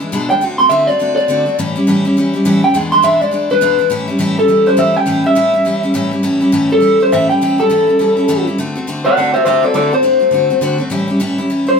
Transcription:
0.00 E3 G#3 D4 E4
0.12 E2 B2 E3 G#3 D4 E4
0.29 E3 G#3 D4 E4 G5
0.41 D3 A3 C4 F#4
0.58 A3 C4 F#4 C6
0.69 D3 A3 C4 F#4 E5
0.87 A3 C4 F#4 D5
0.99 D3 A3 C4 F#4
1.16 C4 F#4 D5
1.20 A3
1.28 D3 A3 C4 F#4
1.46 A3 C4 F#4
1.59 A2 E3 G3 C#4 E4
1.76 G3 C#4 E4
1.87 A2 E3 G3 C#4 E4
2.05 G3 C#4 E4
2.17 E3 G3 C#4 E4
2.33 G3 C#4 E4
2.45 A2 E3 G3 C#4 E4
2.62 G3 C#4 E4 G5
2.74 E2 B2 E3 G#3 D4 E4
2.92 E3 G#3 D4 E4 C6
3.02 E2 B2 E3 G#3 D4 E4 E5
3.21 E3 G#3 D4 E4 D5
3.31 E3 G#3 D4 E4
3.50 E3 G#3 D4 E4 B4
3.61 E2 B2 E3 G#3 D4 E4
3.79 E3 G#3 D4 E4
3.90 A2 E3 G3 C#4 E4
4.08 G3 C#4 E4
4.19 A2 E3 G3 C#4 E4
4.37 G3 C#4 E4 A4
4.48 E3 G3 C#4 E4
4.66 G3 C#4 E4 C5
4.77 A2 E3 G3 C#4 E4 E5
4.94 G3 C#4 E4 G5
5.06 A2 E3 G3 C#4 E4
5.24 G3 C#4 E4 E5
5.35 A2 E3 G3 C#4 E4
5.54 G3 C#4 E4
5.65 E3 G3 C#4 E4
5.83 G3 C#4 E4
5.94 A2 E3 G3 C#4 E4
6.11 G3 C#4 E4
6.23 A2 E3 G3 C#4 E4
6.41 G3 C#4 E4
6.52 A2 E3 G3 C#4 E4
6.70 G3 C#4 E4 A4
6.80 E3 G3 C#4 E4
7.00 G3 C#4 E4 C5
7.12 A2 E3 G3 C#4 E4 E5
7.29 G3 C#4 E4 G5
7.41 A2 E3 G3 C#4 E4
7.58 G3 C#4 E4 A4
7.70 A2 E3 G3 C#4 E4
7.87 G3 C#4 E4
7.99 E3 G3 C#4 E4
8.17 G3 C#4 E4
8.28 A2 E3 G3 C#4 E4
8.47 G3 C#4 E4
8.58 D3 A3 C4 F#4
8.75 A3 C4 F#4
8.87 D3 A3 C4 F#4
9.05 A3 C4 F#4 D5 F#5
9.17 D3 A3 C4 F#4 D5 F#5
9.34 A3 C4 F#4 C5 E5
9.45 D3 A3 C4 F#4 C5 E5
9.63 A3 C4 F#4 A4 D5
9.74 D3 A3 C4 F#4 A4 D5
9.92 A3 C4 F#4 C5
10.03 D3 A3 C4 F#4
10.20 A3 C4 F#4
10.31 D3 A3 C4 F#4
10.50 A3 C4 F#4
10.61 D3 A3 C4 F#4
10.78 A3 C4 F#4
10.90 A2 E3 G3 C#4 E4
11.08 G3 C#4 E4
11.20 A2 E3 G3 C#4 E4
11.38 G3 C#4 E4
11.50 E3 G3 C#4 E4
11.67 G3 C#4 E4 C5

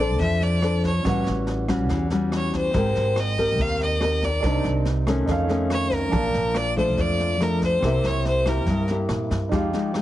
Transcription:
Already playing: A#1 A#3 C4 A4 D5
0.00 D4 A4 C5
0.19 F2 F3 E5, kick, snare
0.41 D5, snare
0.62 D4 A4 C5, cross-stick, snare
0.84 C#5, kick, snare
1.03 A1 A2 G3 C#4, kick, cross-stick, snare
1.07 F#4 B4 F#5
1.26 A1, snare
1.47 snare
1.68 G3 C#4 F#4, kick, cross-stick, snare
1.89 E2 E3, kick, snare
2.10 G3 C#4 F#4, snare
2.32 cross-stick, snare
2.37 C#5
2.53 kick, snare
2.58 C5
2.71 G#1 G#3 C4, kick, snare
2.75 G4 A#4 G5
2.95 G#1, snare
3.16 D#5, cross-stick, snare
3.38 C4 G4 A#4, kick, snare
3.59 D#2 D#3 F5, kick, snare
3.80 D#5, snare
4.01 C4 G4 A#4, cross-stick, snare
4.22 D5, kick, snare
4.40 C2 A#4 C5 D5, kick, cross-stick, snare
4.44 C3 D#3 A#3 D4 D#4
4.64 C2, snare
4.85 snare
5.06 D#3 A3 C#4, kick, cross-stick, snare
5.26 F2 D#4 A4 C#5, kick, snare
5.32 F5
5.49 D#3 A3 C#4, snare
5.70 C#5, cross-stick, snare
5.91 A#4, kick, snare
6.10 A#1 A#2 F3 D4 A5, kick, snare
6.14 A#3 F5
6.34 A#1, snare
6.55 D5, cross-stick, snare
6.76 F3 A3 D4 C5, kick, snare
6.97 F2 D5, kick, snare
7.20 snare
7.40 F3 A3 D4 A#4, cross-stick, snare
7.61 C5, kick, snare
7.80 C2 C3 C4 E4 G4, kick, cross-stick, snare
7.84 A#3 G4 A#4 E5
8.04 C2 C#5, snare
8.25 C5, snare
8.46 A#3 E4 G4 A#4, kick, cross-stick, snare
8.66 G2, kick, snare
8.88 A#3 E4 G4, snare
9.09 A#2, cross-stick, snare
9.31 G2, kick, snare
9.49 F2 F3 G#3 D#4 G4, kick, snare
9.53 G4 F5
9.73 G#3 D#4 G4, snare
9.94 G#3 D#4 G4, cross-stick, snare

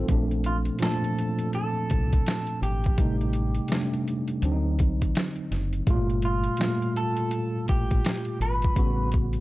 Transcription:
Already playing: D#3 F#3 C4 D#4 F4 A4
0.08 A#1 A#2 F3 A3 D4, kick, closed hi-hat
0.31 closed hi-hat
0.44 F4, closed hi-hat
0.65 closed hi-hat
0.79 A#2 F3 A3 D4, snare, closed hi-hat
0.83 A4
1.04 closed hi-hat
1.18 closed hi-hat
1.39 closed hi-hat
1.53 A4, closed hi-hat
1.90 C2, kick, closed hi-hat
2.13 kick, closed hi-hat
2.26 snare, closed hi-hat
2.47 closed hi-hat
2.62 G#1 G4, closed hi-hat
2.84 kick, closed hi-hat
2.97 A1 C3 G3 A3 D#4, kick, closed hi-hat
3.21 closed hi-hat
3.33 closed hi-hat
3.55 closed hi-hat
3.68 C3 G3 A3 D4, snare, closed hi-hat
3.93 closed hi-hat
4.08 closed hi-hat
4.28 closed hi-hat
4.42 D2 D3 F#3 C4 D4, closed hi-hat
4.51 D#4
4.79 C2, kick, closed hi-hat
5.02 kick, closed hi-hat
5.15 snare, closed hi-hat
5.36 closed hi-hat
5.51 F#1, snare, closed hi-hat
5.73 closed hi-hat
5.87 G1 A2 G3 A3 F4, kick, closed hi-hat
5.93 A#2
6.10 closed hi-hat
6.22 F4, closed hi-hat
6.44 closed hi-hat
6.57 A#2 G3 A3, snare, closed hi-hat
6.61 F4
6.82 closed hi-hat
6.96 A4, closed hi-hat
7.17 closed hi-hat
7.31 closed hi-hat
7.68 A1 G4, kick, closed hi-hat
7.91 kick, closed hi-hat
8.05 snare, closed hi-hat
8.25 closed hi-hat
8.40 G#1 B4, closed hi-hat
8.62 kick, closed hi-hat
8.75 A1 C#3 G3 B3 F#4, kick, closed hi-hat
9.12 kick, closed hi-hat
9.33 closed hi-hat

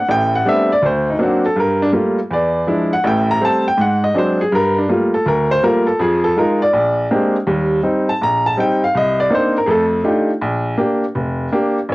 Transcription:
0.08 A1 A2 G5
0.36 F#5
0.45 G3 A3 B3 C4 D4 E5
0.73 D5
0.82 D2 C5
1.10 D#4
1.19 F#3 A#3 C4 D4
1.23 F#4
1.46 A4
1.56 G2 A#4
1.82 D4
1.92 G3 A3 A#3 F4
2.31 E2 D5
2.67 F3 G#3 D4 E4
2.93 F#5
3.04 A1 A2 G5
3.31 A#5
3.41 G3 A3 C4
3.45 A5
3.68 G5
3.77 G#2 F#5
4.04 D#5
4.14 F#3 G#3 C4 D4 C5
4.41 G#4
4.52 G2 A#4
4.78 D4
4.89 G3 A3 A#3 F4
5.14 A4
5.26 D2 A#4
5.51 C5
5.63 G3 A3 A#3 F4 A#4
5.87 A4
5.99 F2 F3 G#4
6.24 A4
6.37 G#3 D#4 F4 A#4
6.62 D5
6.73 A#1
7.11 G#3 A#3 C4 D4 G4
7.47 D#2 G3
7.83 G3 C4 D#4
8.09 A5
8.21 A#1 A#5
8.46 A5
8.57 G3 C4 D#4 G5
8.84 F5
8.95 C2 D#5
9.20 D5
9.30 A#3 C4 D4 D#4
9.34 C5
9.58 A#4
9.66 F2 A3 G#4
9.70 A4
10.04 A3 D4 D#4 F4 G4
10.41 A#1
10.78 A#3 D4 G4
11.15 F1
11.53 A#3 D4 G4
11.89 A1

